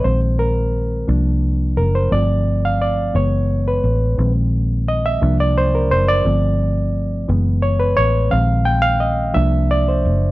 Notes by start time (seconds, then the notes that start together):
0.03 A#1 D#3 G#3 C4 C5
0.39 A#4
1.07 C2 F3 A#3 D4
1.77 F#1 A#4
1.95 C5
2.11 G1 F3 A3 C4 D5
2.65 F5
2.82 D5
3.14 F#1 E3 G#3 B3 C#5
3.68 B4
3.84 A1
4.17 A#1 D#3 G#3 C4
4.88 D#5
5.06 E5
5.21 C2 F3 A#3 D4
5.40 D5
5.58 C5
5.75 A#4
5.91 F#1 C5
6.08 D5
6.24 G1 F3 A3 C4
7.28 F#1 E3 G#3 B3
7.62 C#5
7.80 B4
7.97 A1 C#5
8.30 A#1 D#3 G#3 C4 F5
8.65 G5
8.82 F5
9.00 D#5
9.34 C2 F3 A#3 D4 E5
9.71 D5
9.88 C5
10.05 F#1